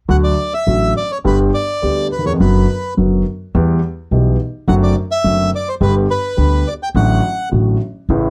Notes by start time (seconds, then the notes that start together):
0.08 D2 D3 F#3 A3 F#4 F#5
0.24 D5
0.54 E5
0.67 A1 A2 D3 F#3 A3 F#4
0.97 D5
1.12 C#5
1.24 G1 G2 D3 G3 B3 G4 B4
1.54 D5
1.82 D2 D3 G3 B3 G4
2.12 B4
2.18 D#2
2.25 E2 C#5
2.32 F2
2.40 F#1 F#2 D3 F#3 B3 F#4 B4
2.97 F#1 F#2 D3 F#3 B3 F#4
3.55 E2 E3 G3 B3 G4
4.11 B1 B2 E3 G3 B3 G4
4.68 F#1 F#2 D3 F#3 A3 C4 F#4 F#5
4.83 D5
5.11 E5
5.24 F#1 F#2 D3 F#3 A3 C4 F#4
5.55 D5
5.69 C5
5.81 G1 G2 D3 G3 B3 G4 B4
6.11 B4
6.37 D2 D3 G3 B3 G4
6.68 D5
6.83 G5
6.95 A1 A2 D3 F#3 A3 F#4 F#5
7.51 A1 A2 D3 F#3 A3 F#4
8.09 A1 A2 C#3 E3 A3 E4